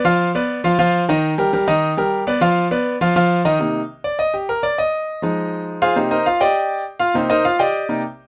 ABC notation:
X:1
M:4/4
L:1/8
Q:1/4=203
K:Cm
V:1 name="Grand piano"
[F,Ff]2 [=B,=Bd]2 [F,Ff] [F,Ff]2 [E,Ee]- | [E,Ee] [G,GB] [G,GB] [E,Ee]2 [G,GB]2 [=B,=Bd] | [F,Ff]2 [=B,=Bd]2 [F,Ff] [F,Ff]2 [E,Ee] | z3 d e G B d |
e6 z [FAcf] | [CGc] [EBce] [Ff] [Gdeg]3 z [Ff] | [CEGc] [EBce] [Ff] [Gdeg]3 z2 |]
V:2 name="Grand piano"
z8 | z8 | z8 | [C,B,E] z6 z |
z3 [F,A,E]4- [F,A,E] | [C,B,E] z6 z | [C,B,] z4 [C,B,E] z2 |]